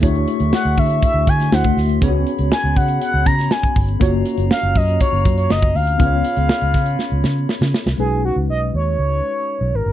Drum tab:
HH |xxxx--oxx-xx-xox|x-xx--oxx-xx-xox|x-xx-xoxx-xx--ox|x-xx--xx--------|
SD |----o------oo-o-|----o------oo---|----o-------o---|----o-o-o-o-oooo|
BD |o-----o-o-o--o--|o-----o---o--oo-|o-----o-o-o--o--|o-----o---------|

HH |----------------|
SD |----------------|
BD |----------------|